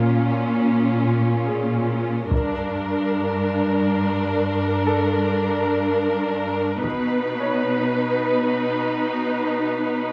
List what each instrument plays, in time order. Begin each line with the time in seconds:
Already playing: cello section A#2, grand piano A#3 A#4, viola section C#4 F4
1.47 grand piano G#4
2.31 cello section G2, viola section D4 A#4, taiko
4.87 grand piano A4
6.84 cello section B2, viola section D#4 B4, taiko
7.41 grand piano C#5